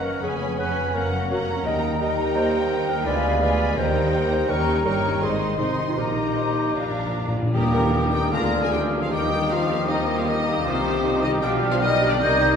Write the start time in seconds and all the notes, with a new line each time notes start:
Already playing: F#1 F#2 C#3 A#3 C#4 F#4 A#4 C#5 D#5 F#5 A#5
0.04 A#3 A#4
0.22 F1 F2 B3 C#4 G#4 B4 C#5 G#5 B5
0.40 B3
0.58 B3 C#4 B4 C#5 G#5 B5
0.77 B3
0.94 F#1 F#2 A#3 C#4 A#4 C#5 F#5 A#5
1.13 A#3
1.30 F1 F2 A#3 C#4 F#4 C#5 F#5 A#5
1.48 A#3
1.65 D#2 D#3 G3 A#3 D#4 G4 A#4 D#5 G5 A#5
1.83 D#4
2.00 G3 A#3 D#4 G4 A#4 D#5 G5 A#5
2.18 D#4
2.35 A#3 C5
2.53 D#4
2.70 G4 G5
2.88 D#4 A#4
3.06 D2 D3 G#3 B3 F4 G#4 B4 D5 F5 G#5 B5
3.24 B3
3.41 G#3 B3 F4 G#4 B4 D5 G#5 B5
3.60 B3
3.77 D#2 D#3 G3 A#3 D#4 G4 A#4 C5 D#5 G5 A#5
3.95 D#4
4.13 G4 A#4 G5 A#5
4.31 D#4 C5
4.48 D#2 D#3 G3 C#4 D#4 G4 A#4 C#5 G5 A#5 C#6
4.68 C#4
4.85 G1 G2 G3 C#4 D#4 G4 A#4 C#5 G5 C#6
5.04 C#4
5.22 G#1 G#2 D#3 C4 D#4 G#4 C5 D#5 C6
5.40 C4
5.59 C2 C3 D#3 C4 D#4 C5 D#5 C6
5.78 C4
5.89 F4
5.97 A#1 A#2 D#3 A#3 D#4 G4 A#4 D#5 A#5
6.17 A#3
6.36 D#4 C5
6.56 A#3
6.75 A#1 A#2 F3 A#3 D4 D5 F5 A#5
6.83 A#2
6.91 A#2 A#3
6.98 A#2
7.06 A#2
7.13 A#2 D4
7.20 A#2
7.28 A#2
7.33 A#2 A#3
7.43 A#2
7.53 D#2 A#2 D#3 G3 A#3 G4 A#4 D#6, tam-tam
7.64 D#4
7.73 D#3 G3 D#4 A#4
7.93 G3 A#3 G4 G5
8.03 A#5
8.12 D#3 G3 D#4 G4 A#4 D#5 G5
8.23 A#4
8.32 D2 D3 G#3 A#3 D4 F4 G#4 A#4 A#5 F6
8.42 A#3
8.52 F3 A#3 D4 G#4
8.62 G#3 G#4 A#4 G#5
8.71 D3 G3 G#3 D4 F4 G4 F5 G5
8.82 G#5
8.91 F3 A#3 D4 A#4
9.01 F3 F4 G#4 F5
9.11 D#2 D#3 G3 D#4 G4 G5 D#6
9.21 D#4
9.30 D#3 G3 A#3 G4
9.40 D#5
9.49 D#3 F3 G3 D#4 F4 F5 G5
9.59 A#5
9.69 D#3 G3 A#3 G4 D#5
9.78 A#4
9.87 D#3 G3 A#3 C4 D#4 D#5
9.97 D#4
10.07 D#3 G3 A#3 G4 A#4
10.16 F3 F4 D#5 F5
10.26 D#3 G3 A#3 D#4 D#5 G5
10.35 A#5
10.45 D#3 G3 A#3 G4 D#5
10.55 A#4
10.64 C2 C3 D#3 G3 C4 D#4 F4 C5
10.74 C4
10.84 D#3 G3 C4 G4
10.94 C5
11.04 D#3 G3 D#4 D#5
11.13 G5
11.22 D#3 G3 C4 D#4 G4 C5 D#5
11.33 G4
11.41 B1 B2 F3 G3 B3 D4 F4 G4 G5 F6
11.52 D4
11.61 F3 G3 D4 G4
11.70 F3 F4 D5 F5
11.80 D#3 F3 G3 B3 D#4 F4 G4 D#5 F5
11.90 G5
12.00 F3 G3 D4 G4 D5
12.09 D3 D4 G4 D5
12.18 C2 C3 D#3 G3 C4 D#4 G4 D#5 G6
12.29 C4
12.38 D#3 G3 C4 D#4 G4
12.48 C5